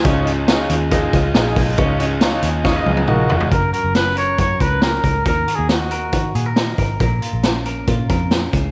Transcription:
<<
  \new Staff \with { instrumentName = "Trumpet" } { \time 4/4 \key des \mixolydian \tempo 4 = 138 r1 | r2. ges'4 | bes'8 bes'8 ces''8 des''8 des''8 ces''8 bes'4 | \tuplet 3/2 { bes'4 aes'8 } ges'2 r4 |
r1 | }
  \new Staff \with { instrumentName = "Overdriven electric guitar" } { \time 4/4 \key des \mixolydian <des' f' aes' ees''>8 <f' aes' ees''>8 <des' f' aes' ees''>4 <des' f' aes' ees''>8 <f' aes' ees''>4 <f' aes' ees''>8 | <des' f' aes' ees''>8 <f' aes' ees''>8 <des' f' aes' ees''>4 <des' f' aes' ees''>8 <f' aes' ees''>4 <f' aes' ees''>8 | r1 | r1 |
r1 | }
  \new Staff \with { instrumentName = "Clean electric guitar" } { \time 4/4 \key des \mixolydian des'8 aes'8 f'8 aes'8 ees''8 f'8 ees''8 f'8 | des'8 ges'16 aes'16 f'8 aes'8 des''16 ees''16 f'8 ees''8 f'8 | <ges, bes'>8 ges'8 des'8 bes'8 ges'8 bes'8 des'8 bes'8 | <ees bes'>8 ges'8 ees'8 bes'8 ges'8 aes'16 bes'16 ees'8 bes'8 |
<bes, bes'>8 f'8 des'8 bes'8 f'8 bes'8 des'8 des8 | }
  \new Staff \with { instrumentName = "Transistor combo organ" } { \time 4/4 \key des \mixolydian <ees' f' des''>8 r8 <ees' f' des''>8 r8 <ees' f' aes'>8 r8 <ees' f' aes'>8 r8 | <ees' f' des''>8 r8 <ees' f' des''>8 r8 <ees' f' ees''>8 r8 <ees' f' bes'>8 r8 | r1 | r1 |
r1 | }
  \new Staff \with { instrumentName = "Picked electric bass" } { \clef bass \time 4/4 \key des \mixolydian des,4. ees,4 des,8 bes,,8 ces,8 | des,4. ees,4 des,8 bes,,8 f,,8 | ges,,8 r16 ges,,4~ ges,,16 ges,8 des,4 des,8 | ees,8 r16 ees,4~ ees,16 ees8 bes,4 aes,,8 |
bes,,8 r16 bes,,4~ bes,,16 bes,8 f,4 des,8 | }
  \new DrumStaff \with { instrumentName = "Drums" } \drummode { \time 4/4 <hh bd>8 hh8 <hh sn>8 hh8 <hh bd>8 <hh bd>8 <hh sn>8 <hho bd>8 | <hh bd>8 hh8 <hh sn>8 hh8 <bd sn>8 tommh16 tommh16 toml8 tomfh16 tomfh16 | <hh bd>8 hh8 <hh sn>8 hh8 <hh bd>8 <hh bd>8 <hh sn>8 <hh bd>8 | <hh bd>8 hh8 <hh sn>8 hh8 <hh bd>8 hh8 <hh sn>8 <hh bd>8 |
<hh bd>8 hh8 <hh sn>8 hh8 <hh bd>8 <hh bd>8 <hh sn>8 <hh bd>8 | }
>>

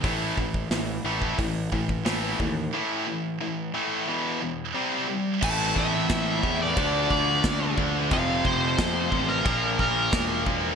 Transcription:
<<
  \new Staff \with { instrumentName = "Lead electric guitar" } { \time 4/4 \key a \phrygian \tempo 4 = 89 r1 | r1 | a''8 e''4~ e''16 d''8. d''4 r8 | f''8 c''4~ c''16 bes'8. bes'4 r8 | }
  \new Staff \with { instrumentName = "Distorted electric guitar" } { \clef bass \time 4/4 \key a \phrygian r1 | r1 | <a, e a c' e'>2 <d f a d'>2 | <f, c f a c'>2 <bes, f bes d'>2 | }
  \new Staff \with { instrumentName = "Distorted electric guitar" } { \clef bass \time 4/4 \key a \phrygian <a, e a>8 <a, e>8 <a, e>8 <a, e a>8 <a, e>8 <a, e>8 <a, e a>8 <a, e>8 | <a, e a>8 <a, e>8 <a, e>8 <a, e a>8 <e, b, e>8 <e, b,>8 <c g c'>8 <c g>8 | <a, e a>4. <a, e a>8 <d a d'>4. <d a d'>8 | <f, c f>4. <f, c f>8 <bes, f bes>4. <bes, f bes>8 | }
  \new Staff \with { instrumentName = "Distorted electric guitar" } { \clef bass \time 4/4 \key a \phrygian <a, e a>8 <a, e>8 <a, e>8 <a, e a>8 <a, e>8 <a, e>8 <a, e a>8 <a, e>8 | <a, e a>8 <a, e>8 <a, e>8 <a, e a>8 <e, b, e>8 <e, b,>8 <c g c'>8 <c g>8 | <a, e a>2 <d a d'>2 | <f, c f>2 <bes, f bes>2 | }
  \new Staff \with { instrumentName = "Picked electric bass" } { \clef bass \time 4/4 \key a \phrygian a,,8 a,,8 a,,8 a,,8 a,,8 a,,8 a,,8 dis,8 | r1 | a,,8 a,,8 a,,8 e,8 d,8 d,8 d,8 d,8 | f,,8 f,,8 f,8 a,,8 bes,,8 bes,,8 e,,4 | }
  \new DrumStaff \with { instrumentName = "Drums" } \drummode { \time 4/4 <hho bd>8 bd16 bd16 <hho sn>8. bd16 <hho bd>8 bd16 bd16 <hho sn>8 bd8 | r4 r4 r4 r4 | <cymc bd>8 bd8 <cymc bd sn>8 bd8 <cymc bd>8 bd8 <cymc bd sn>8 bd8 | <cymc bd>8 bd8 <cymc bd sn>8 bd8 <cymc bd>8 bd8 <cymc bd sn>8 bd8 | }
>>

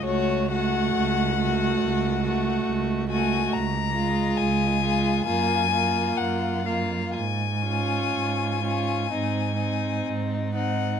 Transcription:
<<
  \new Staff \with { instrumentName = "Violin" } { \time 4/4 \key des \major \tempo 4 = 65 des''8 ges''2~ ges''8 r8 aes''8 | bes''4 aes''4 aes''4 ges''8 f''8 | aes''2. r8 ges''8 | }
  \new Staff \with { instrumentName = "Violin" } { \time 4/4 \key des \major ges'8 ges'4 ges'4 ges'4 ges'8 | r8 f'4 f'8 f'8 f'4 f'8 | r8 f'4 f'8 ees'8 ees'4 ees'8 | }
  \new Staff \with { instrumentName = "Viola" } { \time 4/4 \key des \major a8 a4 a4 a4 a8 | r8 aes4 aes8 bes8 bes4 bes8 | r8 des'4 des'8 c'8 c'4 c'8 | }
  \new Staff \with { instrumentName = "Cello" } { \clef bass \time 4/4 \key des \major des,4 des,4 des,4 des,4 | des,4 des,4 ges,4 ges,4 | aes,4 aes,4 aes,4 aes,4 | }
>>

